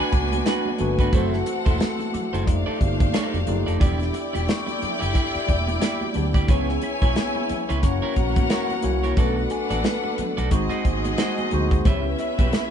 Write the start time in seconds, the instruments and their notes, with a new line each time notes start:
Already playing: tine electric piano A3 B3 D4 F#4 B4, french horn section B3 D4 F#4, string section D4 B4 G#5, celesta G#5
0.00 clean electric guitar D4 F#4 B4
0.12 fingered electric bass C#2, celesta B5, muted clean electric guitar stroke, kick, closed hi-hat, high conga
0.32 muted clean electric guitar stroke, closed hi-hat, high conga
0.46 clean electric guitar D4 F#4 B4, snare, closed hi-hat, muted conga
0.66 muted conga, high conga
0.78 fingered electric bass G1, tine electric piano A3 B3 D4 F#4 B4, muted clean electric guitar stroke, closed hi-hat, low conga
0.99 clean electric guitar D4 F#4 B4, kick, closed hi-hat
1.12 fingered electric bass F#1, french horn section E3 A3, tine electric piano A3 C4 E4 F#4 C5, string section C4 A4 F#5, clean electric guitar E4 A4 C5, kick, closed hi-hat, muted conga, low conga
1.33 muted clean electric guitar stroke, snare, muted conga
1.46 muted clean electric guitar stroke, closed hi-hat
1.66 fingered electric bass E1, clean electric guitar E4 A4 C5, kick, closed hi-hat, high conga
1.80 muted clean electric guitar stroke, snare, closed hi-hat
1.99 muted clean electric guitar stroke, closed hi-hat, muted conga, high conga
2.14 celesta D6, muted fingered electric bass stroke, closed hi-hat, low conga
2.33 fingered electric bass F#1, clean electric guitar E4 A4 C5, closed hi-hat, high conga
2.46 fingered electric bass F1, french horn section D#3 G4 D5, tine electric piano G3 D#4 F4 G4 D5, string section D4 C5 F5, muted clean electric guitar stroke, kick, closed hi-hat
2.52 tine electric piano A3
2.66 clean electric guitar D#4 A4 D5
2.81 fingered electric bass G1, muted clean electric guitar stroke, kick, closed hi-hat, high conga
3.00 muted clean electric guitar stroke, kick, closed hi-hat, high conga
3.14 clean electric guitar D#4 A4 D5, snare, closed hi-hat, muted conga
3.34 fingered electric bass F1, closed hi-hat, muted conga, high conga
3.47 fingered electric bass F#1, tine electric piano A3 D#4 F4 G4 D5, muted clean electric guitar stroke, closed hi-hat, low conga
3.66 fingered electric bass F1, clean electric guitar D#4 A4 D5, closed hi-hat
3.80 fingered electric bass E1, french horn section D3 G3 E4, tine electric piano B3 D4 E4 G4 D5, clean electric guitar E4 G4 D5, string section E4 D5 G5, kick, closed hi-hat, muted conga, low conga
4.00 muted clean electric guitar stroke, snare, closed hi-hat, muted conga
4.13 muted clean electric guitar stroke, closed hi-hat
4.33 fingered electric bass E1, clean electric guitar E4 G4 D5, closed hi-hat, high conga
4.47 celesta C#6, muted clean electric guitar stroke, snare, closed hi-hat
4.66 muted clean electric guitar stroke, closed hi-hat, muted conga, high conga
4.82 muted fingered electric bass stroke, closed hi-hat, low conga
4.99 fingered electric bass F#1, clean electric guitar E4 G4 D5, closed hi-hat
5.14 clean electric guitar E4 G4 D5, kick, closed hi-hat
5.35 muted fingered electric bass stroke, closed hi-hat, muted conga
5.48 fingered electric bass E1, muted clean electric guitar stroke, kick, closed hi-hat, high conga
5.67 muted clean electric guitar stroke, closed hi-hat, high conga
5.81 clean electric guitar E4 G4 D5, snare, closed hi-hat
6.01 muted conga, high conga
6.14 fingered electric bass D2, tine electric piano B3 D4 E4 G4 D5, muted clean electric guitar stroke, closed hi-hat, low conga
6.34 clean electric guitar E4 G4 D5, kick, closed hi-hat
6.48 fingered electric bass C#2, french horn section C#3 B3, tine electric piano B3 C#4 E4 G#4 C#5, clean electric guitar E4 B4 C#5, string section E4 C#5 G#5, kick, closed hi-hat, low conga
6.69 muted clean electric guitar stroke, snare, muted conga
6.81 celesta B6, muted clean electric guitar stroke, closed hi-hat
7.02 fingered electric bass B1, clean electric guitar E4 B4 C#5, kick, closed hi-hat, high conga
7.16 muted clean electric guitar stroke, snare, closed hi-hat, muted conga
7.35 muted clean electric guitar stroke, muted conga, high conga
7.49 muted fingered electric bass stroke, closed hi-hat, low conga
7.69 fingered electric bass C#2, clean electric guitar E4 B4 C#5, closed hi-hat
7.82 fingered electric bass F#1, french horn section E3 A#3 F#4, tine electric piano A#3 C#4 E4 F#4 C#5, string section C#4 A#4 F#5, muted clean electric guitar stroke, kick, closed hi-hat
8.02 clean electric guitar E4 A#4 C#5, muted fingered electric bass stroke, muted conga
8.16 fingered electric bass A#1, muted clean electric guitar stroke, kick, closed hi-hat, high conga
8.36 muted clean electric guitar stroke, kick, closed hi-hat, high conga
8.50 clean electric guitar E4 A#4 C#5, snare, closed hi-hat, muted conga
8.69 closed hi-hat, high conga
8.82 fingered electric bass C2, tine electric piano A#3 C#4 E4 F#4 C#5, muted clean electric guitar stroke, closed hi-hat, low conga
9.04 clean electric guitar E4 A#4 C#5, closed hi-hat
9.17 fingered electric bass B1, french horn section D3 B3 A4, tine electric piano A3 B3 C#4 F#4 B4, string section D4 B4 F#5, clean electric guitar F#4 A4 D5, kick, closed hi-hat, muted conga, low conga
9.25 tine electric piano D4
9.37 muted clean electric guitar stroke
9.50 celesta G#5, muted clean electric guitar stroke, closed hi-hat
9.70 fingered electric bass A1, clean electric guitar F#4 A4 D5, closed hi-hat, high conga
9.84 muted clean electric guitar stroke, snare, closed hi-hat, muted conga
10.04 muted clean electric guitar stroke, muted conga, high conga
10.18 muted fingered electric bass stroke, closed hi-hat, low conga
10.37 fingered electric bass B1, clean electric guitar F#4 A4 D5, closed hi-hat
10.50 fingered electric bass G#1, french horn section C3 G#3 F#4, tine electric piano G#3 C4 D#4 F#4 C5, string section C4 G#4 D#5, muted clean electric guitar stroke, kick, closed hi-hat, muted conga
10.70 clean electric guitar F#4 C5 D#5, closed hi-hat, muted conga
10.85 fingered electric bass G#1, muted clean electric guitar stroke, kick, closed hi-hat, high conga
11.05 muted clean electric guitar stroke, closed hi-hat, high conga
11.18 clean electric guitar F#4 C5 D#5, snare, closed hi-hat, muted conga
11.38 closed hi-hat, high conga
11.51 fingered electric bass D2, tine electric piano G#3 C4 D#4 F#4 C5, muted clean electric guitar stroke, closed hi-hat, low conga
11.71 muted clean electric guitar stroke, kick, closed hi-hat
11.85 fingered electric bass C#2, french horn section C#3 B3 E4, tine electric piano B3 C#4 E4 C#5, string section C#4 B4 E5, clean electric guitar G4 B4 E5, kick, closed hi-hat, muted conga, low conga
12.05 muted clean electric guitar stroke, muted conga
12.19 celesta E5, muted clean electric guitar stroke, closed hi-hat
12.39 fingered electric bass B1, clean electric guitar G4 B4 E5, kick, closed hi-hat, high conga
12.53 muted clean electric guitar stroke, snare, closed hi-hat